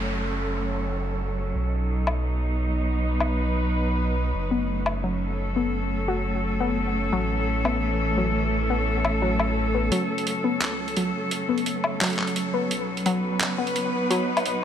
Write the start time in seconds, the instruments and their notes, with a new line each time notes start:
Already playing: sub bass F#1, cello section F#3 A3 C#4 A4, downlifter
1.55 sub bass B1
1.68 cello section D#4
1.97 cello section B3
2.07 low woodblock
2.80 cello section B4
3.20 low woodblock
4.34 sub bass F#1
4.51 cello section A3, synth pluck B3
4.74 cello section C#4
4.86 low woodblock
5.04 synth pluck F#3
5.23 cello section A4
5.56 synth pluck B3
6.08 synth pluck F#3
6.60 synth pluck B3
7.12 sub bass A1, cello section E3, synth pluck F#3
7.65 synth pluck B3, low woodblock
8.17 synth pluck F#3
8.70 synth pluck B3
9.05 low woodblock
9.22 synth pluck F#3
9.39 low woodblock
9.74 synth pluck B3
9.92 sub bass F#1, synth pluck F#3, cello section F#3, closed hi-hat
10.18 closed hi-hat
10.27 closed hi-hat
10.44 synth pluck B3
10.62 sub bass C#2, clap, closed hi-hat
10.88 closed hi-hat
10.97 synth pluck F#3, closed hi-hat
11.14 sub bass F#1
11.31 closed hi-hat
11.49 synth pluck B3
11.58 closed hi-hat
11.66 closed hi-hat
11.84 low woodblock
12.01 synth pluck F#3, clap, closed hi-hat
12.04 closed hi-hat
12.07 closed hi-hat
12.10 closed hi-hat
12.13 closed hi-hat
12.16 sub bass F#1, clap, closed hi-hat
12.27 closed hi-hat
12.36 closed hi-hat
12.54 synth pluck B3
12.71 sub bass B1, closed hi-hat
12.92 cello section B4
12.97 closed hi-hat
13.03 synth pluck F#3, cello section B3, closed hi-hat
13.41 sub bass F#1, clap, closed hi-hat
13.58 synth pluck B3
13.67 closed hi-hat
13.73 cello section D#4, closed hi-hat
14.10 synth pluck F#3, closed hi-hat
14.37 closed hi-hat, low woodblock
14.45 sub bass B1, closed hi-hat